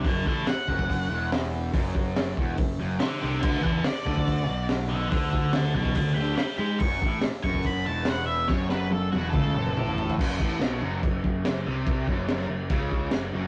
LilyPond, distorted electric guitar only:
\new Staff \with { instrumentName = "Distorted electric guitar" } { \clef bass \time 4/4 \key fis \minor \tempo 4 = 142 fis,8 a,8 r8 fis,4 e,4. | fis,4. e,8 fis,8 fis,8 r8 bis,8 | d8 e8 r8 d4 b,4. | d4. b,8 d8 d8 r8 gis8 |
fis,8 a,8 r8 fis,4 e,4. | fis,4. e,8 cis8 fis,8 a,4 | fis,8 a,8 b,8 fis,8 fis,8 fis,8 fis,8 bis,8~ | bis,8 fis,4 fis,8 cis4 fis,8 fis,8 | }